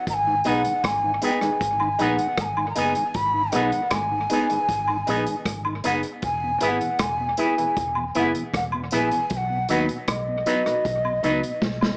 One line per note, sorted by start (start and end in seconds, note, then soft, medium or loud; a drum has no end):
0.07 0.41 G#1 loud
0.07 0.15 A#5 loud
0.07 kick loud
0.07 closed hi-hat medium
0.14 0.49 G#5 loud
0.27 0.35 G#2 medium
0.27 0.35 D#3 medium
0.44 0.63 B1 medium
0.44 0.53 G#3 medium
0.44 0.53 B3 medium
0.44 0.61 B3 medium
0.44 0.60 D#4 loud
0.44 0.54 D#4 medium
0.44 0.62 D#4 loud
0.44 0.61 G#4 medium
0.44 0.62 G#4 medium
0.44 0.61 B4 loud
0.44 0.87 F#5 loud
0.44 closed hi-hat medium
0.44 tambourine medium
0.65 0.73 G#2 medium
0.65 0.73 D#3 medium
0.65 closed hi-hat medium
0.84 1.18 G#1 medium
0.84 1.23 G#5 loud
0.84 kick loud
0.84 cross-stick loud
0.84 closed hi-hat loud
0.84 high woodblock medium
1.03 1.12 G#2 medium
1.03 1.12 D#3 medium
1.21 1.31 G#3 medium
1.21 1.31 B3 medium
1.21 1.38 B3 medium
1.21 1.37 D#4 medium
1.21 1.31 D#4 medium
1.21 1.39 D#4 medium
1.21 1.38 G#4 medium
1.21 1.39 G#4 loud
1.21 1.38 B4 medium
1.21 1.37 G5 medium
1.21 closed hi-hat medium
1.21 tambourine medium
1.37 2.03 G#5 medium
1.41 1.50 G#2 medium
1.41 1.50 D#3 medium
1.41 1.56 D#4 medium
1.41 1.57 G#4 medium
1.41 1.57 B4 medium
1.41 cross-stick medium
1.41 closed hi-hat soft
1.61 1.95 G#1 loud
1.61 kick loud
1.61 closed hi-hat medium
1.80 1.89 G#2 medium
1.80 1.89 D#3 medium
1.80 high woodblock medium
1.99 2.17 A#1 loud
1.99 2.08 G#3 medium
1.99 2.08 B3 medium
1.99 2.15 B3 medium
1.99 2.14 D#4 loud
1.99 2.08 D#4 medium
1.99 2.16 D#4 loud
1.99 2.14 G#4 medium
1.99 2.16 G#4 loud
1.99 2.15 B4 loud
1.99 2.43 F#5 loud
1.99 closed hi-hat medium
1.99 tambourine soft
2.19 2.27 G#2 medium
2.19 2.27 D#3 medium
2.19 closed hi-hat medium
2.38 2.72 G#1 medium
2.38 2.45 A#5 medium
2.38 kick loud
2.38 cross-stick loud
2.38 closed hi-hat loud
2.44 2.69 G#5 loud
2.57 2.66 G#2 medium
2.57 2.66 D#3 medium
2.57 high woodblock medium
2.70 2.78 A#5 medium
2.75 2.94 F#1 loud
2.75 2.85 G#3 medium
2.75 2.92 B3 medium
2.75 2.85 B3 medium
2.75 2.91 D#4 medium
2.75 2.85 D#4 medium
2.75 2.92 D#4 medium
2.75 2.91 G#4 medium
2.75 2.93 G#4 loud
2.75 2.92 B4 loud
2.75 3.17 G#5 loud
2.75 closed hi-hat medium
2.75 tambourine medium
2.95 3.04 G#2 medium
2.95 3.04 D#3 medium
2.95 closed hi-hat medium
3.14 3.49 G#1 loud
3.14 3.55 B5 loud
3.14 kick loud
3.14 closed hi-hat medium
3.34 3.42 G#2 medium
3.34 3.42 D#3 medium
3.52 3.71 B1 medium
3.52 3.62 G#3 medium
3.52 3.62 B3 medium
3.52 3.70 B3 medium
3.52 3.68 D#4 loud
3.52 3.62 D#4 medium
3.52 3.70 D#4 medium
3.52 3.68 G#4 medium
3.52 3.70 G#4 medium
3.52 3.69 B4 loud
3.52 3.94 F#5 loud
3.52 cross-stick medium
3.52 closed hi-hat medium
3.52 tambourine medium
3.72 3.81 G#2 medium
3.72 3.81 D#3 medium
3.72 closed hi-hat medium
3.91 4.26 G#1 medium
3.91 5.58 G#5 loud
3.91 kick loud
3.91 cross-stick loud
3.91 closed hi-hat loud
3.91 high woodblock medium
4.11 4.20 G#2 medium
4.11 4.20 D#3 medium
4.30 4.39 G#3 medium
4.30 4.39 B3 medium
4.30 4.47 B3 medium
4.30 4.45 D#4 medium
4.30 4.39 D#4 medium
4.30 4.47 D#4 medium
4.30 4.45 G#4 medium
4.30 4.48 G#4 medium
4.30 4.46 B4 medium
4.30 closed hi-hat medium
4.30 tambourine medium
4.49 4.59 G#2 medium
4.49 4.59 D#3 medium
4.49 4.64 D#4 medium
4.49 4.65 G#4 medium
4.49 4.65 B4 medium
4.49 closed hi-hat medium
4.69 5.03 G#1 loud
4.69 kick loud
4.69 closed hi-hat medium
4.88 4.97 G#2 medium
4.88 4.97 D#3 medium
4.88 high woodblock medium
5.07 5.25 A#1 loud
5.07 5.17 G#3 medium
5.07 5.24 B3 medium
5.07 5.17 B3 medium
5.07 5.22 D#4 medium
5.07 5.24 D#4 medium
5.07 5.17 D#4 medium
5.07 5.23 G#4 loud
5.07 5.24 G#4 medium
5.07 5.23 B4 loud
5.07 closed hi-hat medium
5.07 tambourine medium
5.26 5.36 G#2 medium
5.26 5.36 D#3 medium
5.26 closed hi-hat medium
5.45 5.80 G#1 loud
5.45 kick loud
5.45 cross-stick loud
5.45 closed hi-hat loud
5.65 5.74 G#2 medium
5.65 5.74 D#3 medium
5.65 high woodblock medium
5.84 6.02 F#1 loud
5.84 5.93 G#3 medium
5.84 6.00 B3 medium
5.84 5.93 B3 medium
5.84 5.99 D#4 medium
5.84 6.00 D#4 medium
5.84 5.93 D#4 medium
5.84 6.00 G#4 loud
5.84 6.01 G#4 medium
5.84 6.00 B4 loud
5.84 5.95 F#5 loud
5.84 closed hi-hat medium
5.84 tambourine medium
6.03 closed hi-hat medium
6.22 6.57 E1 loud
6.22 6.64 G#5 loud
6.22 kick loud
6.22 closed hi-hat medium
6.44 6.51 E2 medium
6.44 6.51 B2 medium
6.60 6.79 G#1 medium
6.60 6.70 G#3 medium
6.60 6.77 B3 medium
6.60 6.70 B3 medium
6.60 6.76 E4 loud
6.60 6.78 E4 medium
6.60 6.70 E4 medium
6.60 6.76 G#4 medium
6.60 6.78 G#4 loud
6.60 6.77 B4 loud
6.60 6.69 G#5 medium
6.60 closed hi-hat medium
6.60 tambourine medium
6.68 7.03 F#5 loud
6.81 6.90 E2 medium
6.81 6.90 B2 medium
6.81 closed hi-hat medium
6.99 7.34 E1 medium
6.99 7.39 G#5 loud
6.99 kick loud
6.99 cross-stick loud
6.99 closed hi-hat loud
6.99 high woodblock medium
7.20 7.28 E2 medium
7.20 7.28 B2 medium
7.37 7.47 G#3 medium
7.37 7.54 B3 medium
7.37 7.47 B3 medium
7.37 7.53 E4 medium
7.37 7.54 E4 medium
7.37 7.47 E4 medium
7.37 7.53 G#4 medium
7.37 7.55 G#4 loud
7.37 7.54 B4 medium
7.37 8.12 G#5 medium
7.37 closed hi-hat medium
7.37 tambourine medium
7.57 7.66 E2 medium
7.57 7.66 B2 medium
7.57 7.73 E4 medium
7.57 7.73 G#4 medium
7.57 7.73 B4 medium
7.57 closed hi-hat medium
7.77 8.11 E1 loud
7.77 kick loud
7.77 closed hi-hat medium
7.95 8.05 E2 medium
7.95 8.05 B2 medium
7.95 high woodblock medium
8.15 8.33 F#1 medium
8.15 8.24 G#3 medium
8.15 8.31 B3 medium
8.15 8.24 B3 medium
8.15 8.30 E4 loud
8.15 8.31 E4 medium
8.15 8.24 E4 medium
8.15 8.31 G#4 medium
8.15 8.32 G#4 loud
8.15 8.31 B4 loud
8.15 8.26 F#5 medium
8.15 closed hi-hat medium
8.15 tambourine medium
8.35 8.44 E2 medium
8.35 8.44 B2 medium
8.35 closed hi-hat medium
8.54 8.88 E1 medium
8.54 8.64 F#5 medium
8.54 kick loud
8.54 cross-stick loud
8.54 closed hi-hat loud
8.72 8.82 E2 medium
8.72 8.82 B2 medium
8.72 high woodblock medium
8.91 9.10 A#1 loud
8.91 9.01 G#3 medium
8.91 9.08 B3 medium
8.91 9.01 B3 medium
8.91 9.08 E4 loud
8.91 9.08 E4 medium
8.91 9.01 E4 medium
8.91 9.08 G#4 medium
8.91 9.09 G#4 loud
8.91 9.08 B4 loud
8.91 closed hi-hat medium
8.91 tambourine medium
8.96 9.33 G#5 loud
9.11 9.20 E2 medium
9.11 9.20 B2 medium
9.11 closed hi-hat medium
9.30 9.65 B1 loud
9.30 9.38 G#5 loud
9.30 kick loud
9.30 closed hi-hat medium
9.37 9.70 F#5 loud
9.50 9.58 B2 medium
9.68 9.87 D#2 medium
9.68 9.85 F#3 medium
9.68 9.78 F#3 medium
9.68 9.78 B3 medium
9.68 9.86 B3 loud
9.68 9.85 D#4 loud
9.68 9.78 D#4 medium
9.68 9.86 D#4 loud
9.68 9.85 F#4 medium
9.68 9.85 B4 loud
9.68 9.79 F#5 loud
9.68 closed hi-hat medium
9.68 tambourine medium
9.89 9.97 B2 medium
9.89 closed hi-hat medium
10.08 10.42 B1 medium
10.08 11.97 D#5 loud
10.08 kick loud
10.08 cross-stick loud
10.08 closed hi-hat loud
10.08 high woodblock medium
10.28 10.36 B2 medium
10.46 10.62 F#3 medium
10.46 10.55 F#3 medium
10.46 10.62 B3 medium
10.46 10.55 B3 medium
10.46 10.55 D#4 medium
10.46 10.62 D#4 medium
10.46 10.63 D#4 loud
10.46 10.62 F#4 medium
10.46 10.62 B4 loud
10.46 closed hi-hat medium
10.46 tambourine medium
10.66 10.75 B2 medium
10.66 10.81 D#4 medium
10.66 10.81 F#4 medium
10.66 10.81 B4 medium
10.66 cross-stick medium
10.66 closed hi-hat medium
10.85 11.19 B1 loud
10.85 kick loud
10.85 closed hi-hat medium
11.05 11.13 B2 medium
11.05 high woodblock medium
11.23 11.41 C#2 medium
11.23 11.39 F#3 medium
11.23 11.32 F#3 medium
11.23 11.32 B3 medium
11.23 11.40 B3 medium
11.23 11.38 D#4 loud
11.23 11.40 D#4 loud
11.23 11.33 D#4 medium
11.23 11.39 F#4 medium
11.23 11.39 B4 loud
11.23 closed hi-hat medium
11.23 tambourine medium
11.43 11.52 B2 medium
11.43 closed hi-hat medium
11.62 11.96 B1 medium
11.62 kick loud
11.62 snare medium
11.81 11.90 B2 medium
11.81 snare medium
11.81 high woodblock medium